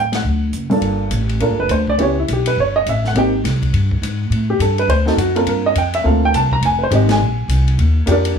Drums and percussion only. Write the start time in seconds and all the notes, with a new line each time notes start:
0.12 snare, ride
0.53 closed hi-hat
0.71 open hi-hat
0.82 ride
1.11 hi-hat pedal, ride
1.29 ride
1.40 ride
1.69 hi-hat pedal, ride
1.87 kick
1.99 ride
2.28 hi-hat pedal, ride
2.46 ride
2.86 hi-hat pedal, ride
3.04 snare
3.15 ride
3.45 snare, hi-hat pedal, ride
3.62 kick, ride
3.74 ride
3.91 kick
4.03 hi-hat pedal, ride
4.32 ride
4.60 hi-hat pedal, ride
4.78 ride
4.89 ride
5.07 snare
5.18 hi-hat pedal, ride
5.36 ride
5.47 ride
5.75 hi-hat pedal, ride
5.93 ride
6.34 hi-hat pedal, ride
6.51 kick
6.62 ride
6.91 hi-hat pedal, ride
7.09 snare, ride
7.49 hi-hat pedal, ride
7.68 ride
7.79 ride
8.07 hi-hat pedal, ride
8.25 ride